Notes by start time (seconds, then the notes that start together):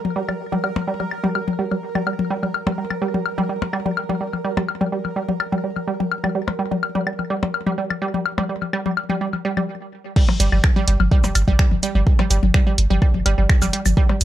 Already playing: A#4
0.05 high tom
0.16 G3
0.28 G3, high tom, claves, high woodblock
0.52 G3, high tom
0.64 G3, high woodblock
0.76 high tom, percussion blips
0.87 G3
1.00 G3, high tom, high woodblock
1.11 claves
1.24 G3, high tom
1.35 G3, high woodblock
1.48 high tom
1.59 G3
1.71 G3, high tom, high woodblock
1.95 G3, high tom, claves
2.07 G3, high woodblock
2.19 high tom
2.30 G3
2.43 G3, high tom, high woodblock
2.54 high woodblock
2.67 G3, high tom, percussion blips
2.78 G3
2.90 high tom, claves, high woodblock
3.02 G3
3.14 G3, high tom
3.26 high woodblock
3.38 G3, high tom
3.49 G3
3.62 high tom, percussion blips, high woodblock
3.73 G3, claves
3.86 G3, high tom
3.97 high woodblock
4.09 G3, high tom
4.21 G3
4.33 high tom, high woodblock
4.45 G3
4.57 G3, high tom, percussion blips, claves
4.68 high woodblock
4.81 G3, high tom
4.92 G3
5.05 high tom, high woodblock
5.16 G3
5.29 G3, high tom
5.40 claves, high woodblock
5.52 G3, high tom
5.64 G3
5.76 high tom, high woodblock
5.88 G3
6.00 G3, high tom
6.12 high woodblock
6.24 G3, high tom, claves
6.35 G3
6.48 high tom, percussion blips, high woodblock
6.59 G3
6.71 G3, high tom
6.83 high woodblock
6.95 G3, high tom
7.07 G3, claves
7.19 high tom, high woodblock
7.30 G3
7.43 G3, high tom, percussion blips
7.54 high woodblock
7.66 G3, high tom
7.78 G3
7.90 high tom, claves, high woodblock
8.02 G3
8.14 G3, high tom
8.26 high woodblock
8.38 G3, high tom, percussion blips
8.49 G3
8.62 high tom, high woodblock
8.73 G3, claves
8.86 G3, high tom
8.97 high woodblock
9.09 G3, high tom
9.21 G3
9.33 high tom, high woodblock
9.45 G3
9.57 G3, high tom, claves
10.16 G3, kick, crash
10.29 high tom, percussion blips
10.40 G1 G3, closed hi-hat, cabasa
10.52 G1 G3, high tom, claves
10.64 finger snap, kick
10.76 G3, high tom
10.88 G1 G3, closed hi-hat
11.00 G1, high tom, high woodblock
11.11 G3, kick
11.24 G1 G3, high tom, percussion blips, cabasa
11.35 G1, closed hi-hat, cabasa, claves, high woodblock
11.48 G1 G3, kick, high tom
11.59 G3, finger snap, kick
11.71 G1, high tom
11.83 G3, closed hi-hat, cabasa
11.95 G1 G3, high tom
12.07 kick
12.19 G3, high tom, percussion blips, claves
12.30 G1 G3, closed hi-hat, cabasa
12.43 G1, high tom
12.54 G3, finger snap, kick
12.67 G3, high tom
12.78 G1, closed hi-hat
12.90 G1 G3, high tom
13.02 G3, kick, claves
13.14 G1, high tom
13.26 G1 G3, closed hi-hat, high woodblock
13.38 G1 G3, high tom
13.49 finger snap, kick
13.62 G1 G3, high tom, cabasa, high woodblock
13.73 G3, closed hi-hat
13.86 G1, high tom, cabasa, claves
13.97 G3, kick
14.09 G3, high tom, percussion blips
14.21 closed hi-hat, cabasa